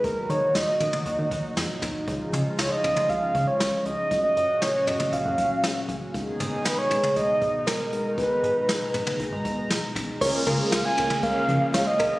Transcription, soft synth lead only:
\new Staff \with { instrumentName = "Soft synth lead" } { \time 4/4 \key aes \dorian \tempo 4 = 118 bes'8 des''8 ees''2 r4 | r4 des''16 ees''8. f''8. des''8. ees''8~ | ees''16 ees''8. des''8 ees''8 f''4. r8 | r4 ces''16 des''8. ees''4 bes'4 |
ces''2. r4 | \key des \major r4 f''16 aes''8. f''4 f''16 ees''8. | }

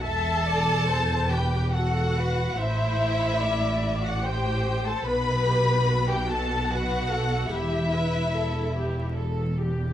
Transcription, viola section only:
\new Staff \with { instrumentName = "Viola section" } { \time 3/4 \key e \minor \tempo 4 = 72 e''8 d''8 c''8 b'8 a'8 b'8 | c''4 d''4 c''4 | b'8 g'8 fis'4 b'8 a'8 | g'8 b'8 a'8 g'8 a'8 g'8 | }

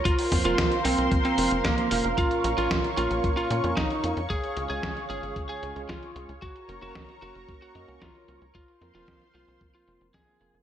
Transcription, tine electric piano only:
\new Staff \with { instrumentName = "Tine electric piano" } { \time 4/4 \key f \phrygian \tempo 4 = 113 r8 <f bes c' f' bes'>16 <f bes c' f' bes'>8 r16 <f bes c' f' bes'>4 <f bes c' f' bes'>8. <f bes c' f' c''>16 <bes, bes des' f' bes'>8~ | <bes, bes des' f' bes'>8 <bes, bes des' f' bes'>16 <bes, bes des' f' bes'>8 r16 <bes, bes des' f' bes'>4 <bes, bes des' f' des''>16 <bes, bes des' f' bes'>16 r8 <bes des' f' bes'>16 r16 | r8 <des aes des' f' aes'>16 <des aes des' f' aes'>8 r16 <des aes des' f' aes'>4 <des aes des' f' des''>16 <des aes des' f' aes'>16 r8 <aes des' f' aes'>16 r16 | r8 <bes des' ges' bes'>16 <bes des' ges' bes'>8 r16 <bes des' ges' bes'>4 <bes des' ges' ees''>16 <bes des' ges' bes'>16 r8 <f bes des' ges' bes'>16 r16 |
r8 <f bes c' f' bes'>16 <f bes c' f' bes'>8 r16 <f bes c' f' bes'>4 <f bes c' f' bes'>8. <f bes c' f' c''>16 <f bes c' f' bes'>8 | }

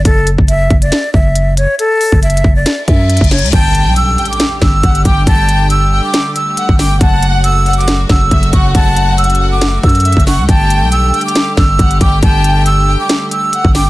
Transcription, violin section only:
\new Staff \with { instrumentName = "Violin section" } { \time 4/4 \key g \lydian \tempo 4 = 138 r1 | r1 | g''4. g''8 r4 fis''8 g''8 | g''4. g''8 r4 fis''8 g''8 |
fis''4. fis''8 r4 e''8 fis''8 | fis''4. fis''8 r4 e''8 fis''8 | g''4. g''8 r4 fis''8 g''8 | g''4. g''8 r4 fis''8 g''8 | }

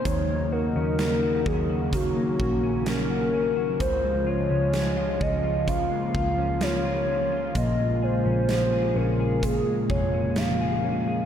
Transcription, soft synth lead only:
\new Staff \with { instrumentName = "Soft synth lead" } { \time 4/4 \key des \major \tempo 4 = 64 des''8 bes'4 aes'8 ges'4 bes'4 | c''8 des''4 ees''8 f''4 des''4 | ees''8 c''4 bes'8 aes'8 des''8 f''4 | }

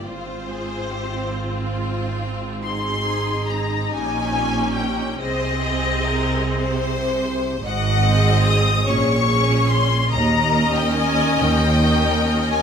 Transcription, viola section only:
\new Staff \with { instrumentName = "Viola section" } { \time 6/8 \key aes \major \tempo 4. = 47 << { f'2. | aes'4. g'4. | aes'2. | r8 aes'4 aes'8 aes'4 |
r8 bes'4. bes'4 | } \\ { c'2.~ | c'4. des'4. | c'2. | r8 c'4 des'8 des'4 |
r8 des'4. des'4 | } >> }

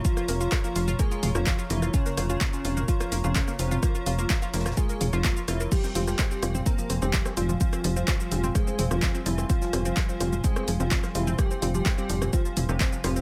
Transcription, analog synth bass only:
\new Staff \with { instrumentName = "Analog synth bass" } { \clef bass \time 4/4 \key f \minor \tempo 4 = 127 r8 f,,8 r8 f,,8 r8 f,,16 f,,8 r16 f,,8 | r8 f,,8 r8 f,,8 r8 f,,16 f,,8 r16 f,,8 | r8 f,,8 r8 f,,8 r8 f,,16 f,,8 r16 f,,8 | r8 f,,8 r8 f,,8 r8 f,,16 f,,8 r16 f,,8 |
r8 f,,8 r8 f,,8 r8 f,,16 f,,8 r16 f,,8 | r8 f,,8 r8 f,,8 r8 f,,16 f,,8 r16 f,,8 | r8 f,,8 r8 f,,8 r8 f,,16 f,,8 r16 f,,8 | }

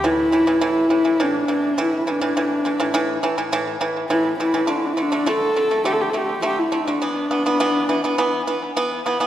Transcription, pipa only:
\new Staff \with { instrumentName = "Pipa" } { \clef bass \time 4/4 \tempo 4 = 103 <a, e>8 <a, e>16 <a, e>16 <a, e>8 <a, e>16 <a, e>16 <a, e>8 <a, e>8 <a, e>8 <a, e>16 <a, e>16 | <a, e>8 <a, e>16 <a, e>16 <a, e>8 <a, e>16 <a, e>16 <a, e>8 <a, e>8 <a, e>8 <a, e>16 <a, e>16 | <d a>8 <d a>16 <d a>16 <d a>8 <d a>16 <d a>16 <d a>8 <d a>8 <d a>8 <d a>16 <d a>16 | <e b>8 <e b>16 <e b>16 <e b>8 <e b>16 <e b>16 <e b>8 <e b>8 <e b>8 <e b>16 <e b>16 | }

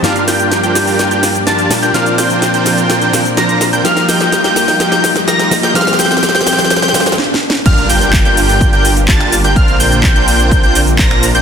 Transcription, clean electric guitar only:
\new Staff \with { instrumentName = "Clean electric guitar" } { \clef bass \time 4/4 \key g \minor \tempo 4 = 126 <g, f g bes d'>2.~ <g, f g bes d'>8 <bes, f g bes d'>8 | <bes, f bes c' d'>2~ <bes, f bes c' d'>8 <bes, f bes c' d'>4. | <f g bes ees'>2.~ <f g bes ees'>8 <f g bes ees'>8 | <f g c' f'>2~ <f g c' f'>8 <f g c' f'>8 r4 |
r1 | r1 | }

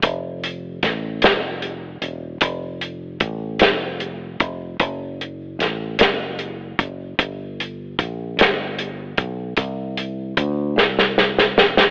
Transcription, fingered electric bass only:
\new Staff \with { instrumentName = "Fingered electric bass" } { \clef bass \time 6/8 \key f \major \tempo 4. = 50 f,,4 a,,8 f,,4 e,,8 | f,,4 a,,8 f,,4 f,,8 | ges,,4 a,,8 ges,,4 ges,,8 | g,,4 bes,,8 g,,4 b,,8 |
c,4 d,8 c,4 e,,8 | }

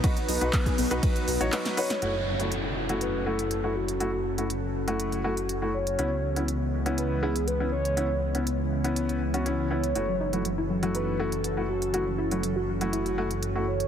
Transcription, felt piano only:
\new Staff \with { instrumentName = "Felt piano" } { \time 4/4 \key fis \dorian \tempo 4 = 121 <dis' fis' b'>16 r8 <dis' fis' b'>16 r8. <dis' fis' b'>8. r16 <dis' fis' cis''>16 <dis' fis' b'>8 <dis' fis' b'>16 r16 | <a e' fis'>16 r8 <a e' fis'>16 r8. <a e' fis'>8. <a e' fis'>16 r8 <a e' fis'>16 r8 | <a e' fis'>16 r8 <a e' fis'>16 r8. <a e' fis'>8. <a e' fis'>16 r8 <a e' fis'>16 r8 | <b cis' e'>16 r8 <b cis' e'>16 r8. <b cis' e'>8. <b cis' e'>16 r8 <b cis' e'>16 r8 |
<b cis' e'>16 r8 <b cis' e'>16 r8. <b cis' e'>8. r16 <b cis' fis'>16 <b cis' e'>8 <b cis' e'>16 r16 | <a e' fis'>16 r8 <a e' fis'>16 r8. <a e' fis'>8. <a e' fis'>16 r8 <a e' fis'>16 r8 | <a e' fis'>16 r8 <a e' fis'>16 r8. <a e' fis'>8. <a e' fis'>16 r8 <a e' fis'>16 r8 | }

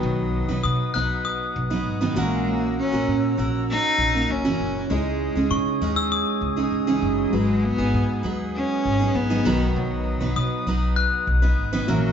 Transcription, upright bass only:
\new Staff \with { instrumentName = "Upright bass" } { \clef bass \time 4/4 \key gis \minor \tempo 4 = 99 b,,8. b,,16 b,8 b,,8. r16 b,,8 gis,,8 ais,,8~ | ais,,8. ais,,16 ais,8 ais,,8. r16 ais,,8 fis,,8 fis,,8 | cis,8. cis,16 cis8 dis,8. r16 cis,8 cis,8 fis,,8 | gis,,8. gis,,16 gis,8 dis,8. r16 gis,,8 gis,,8 b,,8 |
b,,8. b,,16 b,8 b,,8. r16 b,,8 gis,,8 ais,,8 | }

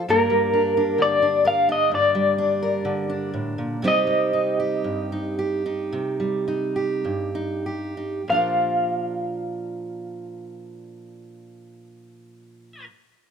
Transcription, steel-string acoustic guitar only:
\new Staff \with { instrumentName = "Steel-string acoustic guitar" } { \time 4/4 \key bes \major \tempo 4 = 54 << { <g bes d'>8 d'16 d'8 d'16 bes'16 d'8. d'16 bes'8 d'8. | <g c' ees' g'>8 ees'16 g'8 ees'16 g'16 ees'8. ees'16 g'8 ees'16 g'16 ees'16 | <f d' f' bes'>1 | } \\ { g,16 g8. d4 g,16 g8. d8 a,16 bes,16 | c16 g8. g,4 c16 g8. g,4 | bes,1 | } >> }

